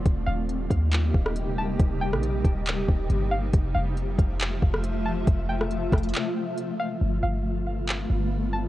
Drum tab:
HH |x-------x---x---x-------x-------|x-------x---x---x-------x-------|x-------x---x---x-------x-------|x-------x---xxxxx-------x-------|
CP |----------------x---------------|----------------x---------------|----------------x---------------|----------------x---------------|
SD |----------------------r---------|------r-------------------------|----------------------r---------|------r-----r-------------------|
BD |o-----------o-------o-----------|o-----------o-------o-----------|o-----------o-------o-----------|o-----------o-------------------|

HH |--------------------------------|
CP |----------------x---------------|
SD |--------------------------------|
BD |--------------------------------|